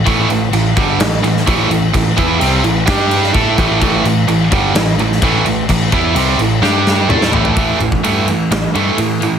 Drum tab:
CC |x-x-x-x-x-x-x-x-|x-x-x-x-x-x-x-x-|x-x-x-x-x-x-x-x-|x-x-x-x---------|
RD |----------------|----------------|----------------|----------------|
SD |--------o--o----|--------o--o----|--------o--o----|--------o-o--o--|
T2 |----------------|----------------|----------------|------------o---|
FT |----------------|----------------|----------------|--------------oo|
BD |o-----o-----o---|o-o-----o---o-o-|o-----o-----o---|o-o-------------|

CC |----------------|
RD |x-x-x-x-x-x-x-x-|
SD |--------o-------|
T2 |----------------|
FT |----------------|
BD |o--o------------|